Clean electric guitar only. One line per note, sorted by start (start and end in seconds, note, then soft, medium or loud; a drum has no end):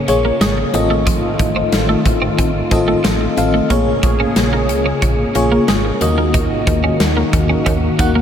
0.08 muted clean electric guitar stroke soft
0.25 0.36 A#3 medium
0.41 0.52 G#3 medium
0.58 muted clean electric guitar stroke soft
0.90 1.02 A3 medium
1.07 1.18 F3 medium
1.40 muted clean electric guitar stroke soft
1.56 1.67 C4 medium
1.89 2.00 A3 medium
2.06 muted clean electric guitar stroke soft
2.22 2.33 C4 medium
2.39 2.50 C4 medium
2.71 muted clean electric guitar stroke soft
2.88 2.99 A3 medium
3.04 3.16 F3 medium
3.21 muted clean electric guitar stroke soft
3.54 3.65 A3 medium
3.70 3.82 A#3 medium
4.03 muted clean electric guitar stroke soft
4.20 4.31 C#4 medium
4.53 4.64 A#3 medium
4.69 muted clean electric guitar stroke soft
4.86 4.97 C#4 medium
5.02 5.14 C#4 medium
5.35 muted clean electric guitar stroke soft
5.52 5.63 A#3 medium
5.68 5.80 G#3 medium
5.85 muted clean electric guitar stroke soft
6.18 6.29 A#3 medium
6.34 6.45 D#4 medium
6.67 muted clean electric guitar stroke soft
6.84 6.95 C#4 medium
7.17 7.28 A#3 medium
7.33 muted clean electric guitar stroke soft
7.50 7.61 C#4 medium
7.66 7.77 C#4 medium
7.99 muted clean electric guitar stroke soft
8.15 8.22 A#3 medium